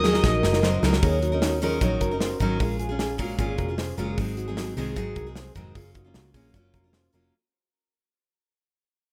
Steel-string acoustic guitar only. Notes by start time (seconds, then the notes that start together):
0.04 F#3 C#4 D#4 A#4
0.62 F#3 C#4 D#4 A#4
0.83 F#3 C#4 D#4 A#4
1.02 F#3 C#4 D#4 A#4
1.32 C#4 D#4 A#4
1.62 D#3 F#3 C#4 D#4 A#4
1.81 D#3 F#3 C#4 D#4 A#4
2.11 C#4 D#4 A#4
2.40 D#3 F#3 C#4 D#4 A#4
2.60 G#3 C#4 F4 G#4
2.89 C#4 F4 G#4
3.18 A#2 G#3 C#4 F4 G#4
3.39 A#2 G#3 C#4 F4 G#4
3.68 C#4 F4 G#4
3.98 A#2 G#3 C#4 F4 G#4
4.18 F#3 G#3 C4 G#4
4.48 F#3 G#3 C4 G#4
4.77 G#2 D#3 F#3 G#3 C4 G#4
4.96 G#2 D#3 F#3 G#3 C4 G#4
5.27 F#3 G#3 C4 G#4
5.56 G#2 D#3 F#3 G#3 C4 G#4
5.75 F#3 A#3 C#4 F4
6.04 A#3 C#4 F4
6.35 F#3 A#3 C#4 F4
6.54 F#3 A#3 C#4 F4
6.84 A#3 C#4 F4
7.13 F#3 A#3 C#4 F4